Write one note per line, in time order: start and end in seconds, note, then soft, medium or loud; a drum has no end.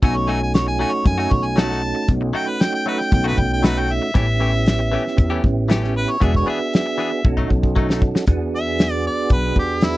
0.02 0.82 B1 loud
0.02 0.16 F#3 medium
0.02 4.11 A3 medium
0.02 0.15 A3 medium
0.02 4.11 C#4 medium
0.02 4.11 D#4 medium
0.02 0.15 D#4 medium
0.02 4.11 F#4 medium
0.02 0.14 F#4 medium
0.02 0.18 G#5 medium
0.02 kick loud
0.02 closed hi-hat medium
0.15 0.31 C#5 medium
0.15 muted clean electric guitar stroke soft
0.28 0.41 F#3 medium
0.28 0.41 A3 medium
0.28 0.40 D#4 medium
0.28 0.40 F#4 medium
0.28 0.41 G#5 loud
0.41 0.54 G#5 medium
0.41 muted clean electric guitar stroke soft
0.54 0.66 C#5 medium
0.54 snare loud
0.54 closed hi-hat medium
0.67 0.79 G#5 medium
0.67 muted clean electric guitar stroke soft
0.79 0.93 F#3 medium
0.79 0.92 A3 medium
0.79 0.92 D#4 medium
0.79 0.91 F#4 medium
0.79 0.95 G#5 loud
0.92 1.05 C#5 medium
0.92 muted clean electric guitar stroke soft
1.05 1.26 F#2 loud
1.05 1.18 G#5 loud
1.05 muted clean electric guitar stroke soft
1.05 kick medium
1.05 closed hi-hat medium
1.18 1.29 F#3 medium
1.18 1.30 A3 medium
1.18 1.30 D#4 medium
1.18 1.31 F#4 medium
1.18 1.34 G#5 loud
1.31 1.91 B1 medium
1.31 1.47 C#5 medium
1.31 kick medium
1.46 1.61 G#5 medium
1.56 1.70 F#3 medium
1.56 1.70 A3 medium
1.56 1.69 D#4 medium
1.56 1.68 F#4 medium
1.56 2.08 A5 loud
1.56 snare loud
1.56 closed hi-hat medium
1.69 1.81 A3 soft
1.69 1.82 D#4 soft
1.69 1.82 F#4 medium
1.69 snare soft
1.82 muted clean electric guitar stroke soft
1.95 muted clean electric guitar stroke soft
2.08 2.29 B1 loud
2.08 kick loud
2.08 closed hi-hat medium
2.21 muted clean electric guitar stroke soft
2.33 2.47 F#3 medium
2.33 2.47 A3 medium
2.33 2.46 D#4 medium
2.33 2.45 F#4 medium
2.33 2.50 G5 loud
2.47 2.64 B4 medium
2.47 muted clean electric guitar stroke soft
2.60 2.74 G5 loud
2.60 snare loud
2.60 closed hi-hat medium
2.73 2.86 G5 loud
2.73 muted clean electric guitar stroke soft
2.86 2.99 F#3 medium
2.86 3.00 A3 medium
2.86 2.99 D#4 medium
2.86 2.98 F#4 medium
2.86 3.02 B4 medium
2.99 3.12 G5 loud
2.99 muted clean electric guitar stroke soft
2.99 snare soft
3.12 3.32 B1 loud
3.12 3.25 G5 loud
3.12 muted clean electric guitar stroke soft
3.12 kick loud
3.12 closed hi-hat medium
3.24 3.36 F#3 medium
3.24 3.37 A3 medium
3.24 3.37 D#4 medium
3.24 3.37 F#4 medium
3.24 3.41 B4 loud
3.38 3.97 B1 medium
3.38 3.51 G5 medium
3.38 kick medium
3.53 3.67 G5 medium
3.63 3.76 F#3 medium
3.63 3.77 A3 medium
3.63 3.76 D#4 medium
3.63 3.74 F#4 medium
3.63 3.81 B4 medium
3.63 snare loud
3.63 closed hi-hat medium
3.75 3.88 A3 soft
3.75 3.89 D#4 soft
3.75 3.89 F#4 medium
3.75 3.94 G5 medium
3.89 5.41 E5 loud
3.89 muted clean electric guitar stroke soft
4.02 muted clean electric guitar stroke soft
4.14 4.95 A1 medium
4.14 4.28 E3 medium
4.14 4.27 A3 medium
4.14 6.17 B3 medium
4.14 6.17 C#4 medium
4.14 4.27 C#4 medium
4.14 6.17 E4 medium
4.14 6.18 G4 medium
4.14 4.26 G4 medium
4.14 kick loud
4.14 closed hi-hat medium
4.40 4.53 E3 medium
4.40 4.53 A3 medium
4.40 4.52 C#4 medium
4.40 4.52 G4 medium
4.53 muted clean electric guitar stroke medium
4.66 snare loud
4.66 closed hi-hat medium
4.79 muted clean electric guitar stroke soft
4.92 5.05 E3 medium
4.92 5.05 A3 medium
4.92 5.05 C#4 medium
4.92 5.04 G4 medium
5.05 muted clean electric guitar stroke soft
5.05 snare soft
5.17 5.38 E2 medium
5.17 muted clean electric guitar stroke soft
5.17 kick loud
5.17 closed hi-hat medium
5.30 5.42 E3 medium
5.30 5.42 A3 medium
5.30 5.43 C#4 medium
5.30 5.43 G4 medium
5.43 6.04 A1 medium
5.43 muted clean electric guitar stroke soft
5.43 kick medium
5.69 5.82 E3 medium
5.69 5.83 A3 medium
5.69 5.82 C#4 medium
5.69 5.80 G4 medium
5.69 snare loud
5.69 closed hi-hat medium
5.82 5.94 A3 soft
5.82 5.95 C#4 soft
5.82 5.95 G4 medium
5.82 snare soft
5.95 6.12 B4 loud
5.95 muted clean electric guitar stroke soft
6.08 6.21 C#5 medium
6.08 muted clean electric guitar stroke soft
6.20 6.41 E1 medium
6.20 6.34 E3 medium
6.20 6.34 B3 medium
6.20 7.23 B3 medium
6.20 6.33 D4 medium
6.20 7.23 D4 medium
6.20 7.23 F#4 medium
6.20 7.23 G#4 medium
6.20 6.33 G#4 medium
6.20 6.35 E5 medium
6.20 kick loud
6.20 closed hi-hat medium
6.34 6.47 C#5 loud
6.34 muted clean electric guitar stroke soft
6.34 kick medium
6.46 6.60 E3 medium
6.46 6.60 B3 medium
6.46 6.59 D4 medium
6.46 6.59 G#4 medium
6.46 6.73 E5 loud
6.60 muted clean electric guitar stroke medium
6.74 7.24 E5 loud
6.74 snare loud
6.74 closed hi-hat medium
6.86 muted clean electric guitar stroke soft
6.98 7.11 E3 medium
6.98 7.11 B3 medium
6.98 7.11 D4 medium
6.98 7.10 G#4 medium
7.11 muted clean electric guitar stroke soft
7.25 7.45 B1 loud
7.25 8.26 C#4 medium
7.25 8.26 D#4 medium
7.25 8.26 F#4 medium
7.25 8.26 A4 medium
7.25 muted clean electric guitar stroke soft
7.25 kick loud
7.37 7.49 F#3 medium
7.37 7.50 A3 medium
7.37 7.50 D#4 medium
7.37 kick medium
7.50 8.10 B1 medium
7.50 kick medium
7.63 kick medium
7.76 7.89 F#3 medium
7.76 7.90 A3 medium
7.76 7.88 D#4 medium
7.76 kick medium
7.89 8.02 A3 medium
7.89 8.02 D#4 medium
7.89 snare medium
8.02 muted clean electric guitar stroke soft
8.02 kick medium
8.15 muted clean electric guitar stroke soft
8.15 snare medium
8.27 9.07 E2 medium
8.27 9.97 B3 medium
8.27 9.97 D4 medium
8.27 9.97 F#4 medium
8.27 9.97 G#4 medium
8.27 kick loud
8.27 closed hi-hat medium
8.56 8.92 E5 medium
8.79 snare loud
8.79 closed hi-hat medium
8.92 9.05 D5 medium
9.07 9.31 D5 medium
9.30 9.50 B1 medium
9.30 9.57 B4 medium
9.30 kick loud
9.30 closed hi-hat medium
9.56 9.97 E2 medium
9.56 9.86 G4 medium
9.56 kick medium
9.81 9.97 E4 medium
9.81 snare loud
9.81 closed hi-hat medium